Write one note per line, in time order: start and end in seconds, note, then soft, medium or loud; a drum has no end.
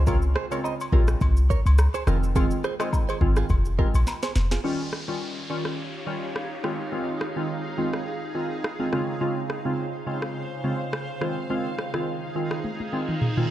0.00 0.35 C#2 loud
0.07 0.25 C#3 loud
0.07 0.25 G#3 medium
0.07 0.25 C4 medium
0.07 0.25 F4 loud
0.07 0.17 F4 medium
0.07 0.17 A#4 medium
0.07 kick loud
0.07 high agogo medium
0.07 shaker medium
0.22 shaker medium
0.36 0.46 G#4 medium
0.36 0.45 C5 medium
0.36 cross-stick medium
0.51 0.90 C#3 medium
0.51 0.90 G#3 medium
0.51 0.90 C4 medium
0.51 0.90 F4 medium
0.51 0.60 A#4 medium
0.51 0.59 C#5 medium
0.51 high agogo medium
0.51 shaker soft
0.64 0.74 C5 medium
0.64 0.74 D#5 medium
0.64 low woodblock medium
0.64 shaker medium
0.80 high agogo medium
0.80 shaker medium
0.92 1.15 A#1 medium
0.92 1.19 C#3 medium
0.92 1.19 G#3 medium
0.92 1.19 C4 medium
0.92 1.19 F4 medium
0.92 1.03 G4 medium
0.92 1.02 A#4 medium
0.92 kick medium
1.08 cross-stick medium
1.08 shaker medium
1.21 1.56 C2 loud
1.21 kick loud
1.21 high agogo medium
1.21 shaker medium
1.37 shaker soft
1.50 1.60 A#4 medium
1.50 1.59 C#5 medium
1.50 kick medium
1.50 shaker medium
1.66 1.88 C#2 medium
1.66 high agogo medium
1.66 shaker medium
1.78 cross-stick loud
1.78 low woodblock medium
1.78 shaker medium
1.94 2.03 G#4 medium
1.94 2.02 C5 medium
1.94 high agogo medium
1.94 shaker medium
2.07 2.52 F1 loud
2.07 2.25 D#3 medium
2.07 2.25 G#3 medium
2.07 2.25 C4 medium
2.07 2.25 F4 medium
2.07 2.17 F4 medium
2.07 2.17 A#4 medium
2.07 cross-stick medium
2.07 shaker medium
2.23 shaker soft
2.36 2.53 D#3 loud
2.36 2.53 G#3 medium
2.36 2.53 C4 medium
2.36 2.54 F4 loud
2.36 2.46 F4 medium
2.36 2.45 G#4 medium
2.36 kick loud
2.36 high agogo medium
2.36 shaker medium
2.51 shaker medium
2.64 2.74 G#4 medium
2.64 2.74 C5 medium
2.64 cross-stick medium
2.64 shaker soft
2.80 3.18 D#3 medium
2.80 3.18 G#3 medium
2.80 3.18 C4 medium
2.80 3.18 F4 medium
2.80 2.88 C5 medium
2.80 2.88 D#5 medium
2.80 cross-stick medium
2.80 high agogo medium
2.80 shaker soft
2.93 kick medium
2.93 low woodblock medium
2.93 shaker medium
3.09 3.17 G#4 medium
3.09 3.16 C5 medium
3.09 high agogo medium
3.09 shaker medium
3.21 3.43 G#1 medium
3.21 3.48 D#3 medium
3.21 3.48 G#3 medium
3.21 3.48 C4 medium
3.21 3.48 F4 medium
3.21 kick medium
3.36 3.46 F4 medium
3.36 3.45 G#4 medium
3.36 cross-stick medium
3.36 shaker medium
3.49 3.84 F1 loud
3.49 kick loud
3.49 high agogo medium
3.49 shaker medium
3.65 shaker soft
3.78 3.96 D#3 medium
3.78 3.96 G#3 medium
3.78 3.96 C4 medium
3.78 3.96 F4 medium
3.78 3.89 G4 medium
3.78 3.88 A#4 medium
3.78 kick medium
3.94 4.04 A#1 medium
3.94 high agogo medium
3.94 shaker medium
4.07 snare medium
4.07 low woodblock medium
4.07 shaker medium
4.23 4.31 G#4 medium
4.23 4.31 C5 medium
4.23 snare medium
4.23 high agogo medium
4.23 shaker medium
4.36 4.58 F1 medium
4.36 snare medium
4.36 shaker medium
4.51 4.60 F4 medium
4.51 4.59 G#4 medium
4.51 snare medium
4.51 shaker soft
4.64 4.82 D#3 medium
4.64 4.82 G3 medium
4.64 4.82 C#4 medium
4.64 8.89 D#4 medium
4.64 4.82 F4 loud
4.64 6.62 G4 medium
4.64 6.62 C#5 medium
4.64 8.89 F5 medium
4.64 downlifter medium
4.93 cross-stick medium
5.08 5.47 D#3 medium
5.08 5.47 G3 medium
5.08 5.47 C#4 medium
5.08 5.47 F4 medium
5.50 5.76 D#3 medium
5.50 5.76 G3 medium
5.50 5.77 C#4 medium
5.50 5.77 F4 medium
5.65 cross-stick medium
6.06 6.24 D#3 medium
6.06 6.25 G3 medium
6.06 6.25 C#4 medium
6.06 6.25 F4 medium
6.36 cross-stick medium
6.64 6.82 D#3 medium
6.64 6.82 G#3 medium
6.64 6.82 C4 medium
6.64 6.82 F4 medium
6.64 8.91 G#4 medium
6.64 cross-stick medium
6.92 7.10 D#3 medium
6.92 7.10 G#3 medium
6.92 7.10 C4 medium
6.92 7.10 F4 loud
7.21 cross-stick medium
7.36 7.75 D#3 medium
7.36 7.75 G#3 medium
7.36 7.75 C4 medium
7.36 7.75 F4 medium
7.78 8.05 D#3 medium
7.78 8.05 G#3 medium
7.78 8.05 C4 medium
7.78 8.05 F4 medium
7.93 cross-stick medium
8.35 8.53 D#3 medium
8.35 8.53 G#3 medium
8.35 8.53 C4 medium
8.35 8.53 F4 medium
8.64 cross-stick loud
8.79 8.95 D#3 medium
8.79 8.91 G#3 medium
8.79 8.92 C4 medium
8.79 8.92 F4 medium
8.92 9.19 C#3 loud
8.92 11.19 C#3 medium
8.92 9.19 G#3 medium
8.92 9.19 C4 medium
8.92 9.19 F4 loud
8.92 11.19 C5 medium
8.92 13.51 F5 medium
8.92 cross-stick medium
9.21 9.39 C#3 medium
9.21 9.39 G#3 medium
9.21 9.39 C4 medium
9.21 9.39 F4 loud
9.50 cross-stick medium
9.65 10.04 C#3 medium
9.65 10.04 G#3 medium
9.65 10.04 C4 medium
9.65 10.04 F4 medium
10.06 10.33 C#3 medium
10.06 10.33 G#3 medium
10.06 10.33 C4 medium
10.06 10.34 F4 medium
10.22 cross-stick medium
10.64 10.82 C#3 medium
10.64 10.82 G#3 medium
10.64 10.82 C4 medium
10.64 10.82 F4 medium
10.93 cross-stick loud
11.21 11.39 D#3 medium
11.21 11.39 G#3 medium
11.21 11.39 C4 medium
11.21 13.51 D#4 medium
11.21 11.39 F4 medium
11.21 13.51 G#4 medium
11.21 cross-stick medium
11.50 11.67 D#3 loud
11.50 11.68 G#3 medium
11.50 11.68 C4 medium
11.50 11.68 F4 loud
11.79 cross-stick medium
11.94 12.32 D#3 medium
11.94 12.32 G#3 medium
11.94 12.32 C4 medium
11.94 12.33 F4 medium
11.94 cross-stick medium
12.35 12.62 D#3 medium
12.35 12.62 G#3 medium
12.35 12.62 C4 medium
12.35 12.62 F4 medium
12.51 cross-stick medium
12.64 high tom medium
12.64 reverse cymbal medium
12.80 high tom soft
12.92 13.10 D#3 medium
12.92 13.10 G#3 medium
12.92 13.10 C4 medium
12.92 13.11 F4 medium
13.09 mid tom medium
13.21 mid tom medium
13.37 13.51 D#3 medium
13.37 13.51 G#3 medium
13.37 13.51 C4 medium
13.37 13.51 F4 medium
13.37 mid tom medium